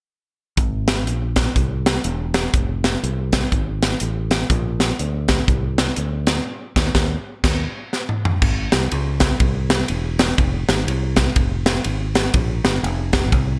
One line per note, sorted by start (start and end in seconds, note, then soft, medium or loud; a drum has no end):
0.57 1.06 G#1 medium
0.57 kick loud
0.57 closed hi-hat medium
0.88 snare loud
0.88 closed hi-hat medium
1.06 1.48 A#1 medium
1.06 closed hi-hat medium
1.36 kick medium
1.36 snare loud
1.36 closed hi-hat medium
1.56 1.97 C2 medium
1.56 kick medium
1.56 closed hi-hat medium
1.86 snare loud
1.86 closed hi-hat medium
2.04 2.46 E1 medium
2.04 closed hi-hat medium
2.34 snare loud
2.34 closed hi-hat medium
2.54 2.95 F1 medium
2.54 kick loud
2.54 closed hi-hat medium
2.84 snare medium
2.84 closed hi-hat medium
3.03 3.45 C2 medium
3.03 closed hi-hat medium
3.33 kick medium
3.33 snare loud
3.33 closed hi-hat medium
3.52 3.94 G#1 medium
3.52 kick medium
3.52 closed hi-hat medium
3.83 snare loud
3.83 closed hi-hat medium
4.00 4.43 A1 medium
4.00 closed hi-hat medium
4.31 snare loud
4.31 closed hi-hat medium
4.50 4.92 A#1 loud
4.50 kick loud
4.50 closed hi-hat medium
4.80 snare medium
4.80 closed hi-hat medium
4.99 5.41 D2 medium
4.99 closed hi-hat medium
5.28 kick medium
5.28 snare loud
5.28 closed hi-hat medium
5.48 5.90 C2 medium
5.48 kick loud
5.48 closed hi-hat medium
5.78 snare loud
5.78 closed hi-hat medium
5.96 6.39 D2 medium
5.96 closed hi-hat medium
6.27 snare loud
6.27 closed hi-hat medium
6.76 6.89 D#2 medium
6.76 kick medium
6.76 snare loud
6.76 crash medium
6.95 7.16 D#2 medium
6.95 kick loud
6.95 snare loud
7.44 7.65 D#2 medium
7.44 kick medium
7.44 snare loud
7.44 crash medium
7.93 snare medium
8.09 mid tom medium
8.25 floor tom medium
8.42 8.68 G#1 loud
8.42 kick loud
8.42 crash medium
8.72 8.88 C2 medium
8.72 snare medium
8.72 ride medium
8.91 9.33 C#2 medium
8.91 ride medium
9.20 kick medium
9.20 snare loud
9.20 ride medium
9.40 9.82 C2 medium
9.40 kick loud
9.40 ride medium
9.70 snare loud
9.70 ride medium
9.88 10.31 E1 medium
9.88 ride medium
10.19 snare loud
10.19 ride medium
10.38 10.64 F1 loud
10.38 kick loud
10.38 ride medium
10.68 10.84 G#1 loud
10.68 snare medium
10.68 ride soft
10.87 11.29 C2 medium
10.87 ride medium
11.16 kick medium
11.16 snare loud
11.16 ride medium
11.36 11.78 F1 medium
11.36 kick loud
11.36 ride medium
11.66 snare loud
11.66 ride medium
11.84 12.27 G#1 medium
11.84 ride medium
12.15 snare loud
12.15 ride medium
12.34 12.60 A#1 loud
12.34 kick loud
12.34 ride medium
12.64 12.80 G1 medium
12.64 snare loud
12.64 ride soft
12.83 13.32 F1 loud
12.83 ride medium
13.13 kick loud
13.13 snare loud
13.13 ride medium
13.32 13.59 C2 medium
13.32 kick loud
13.32 ride medium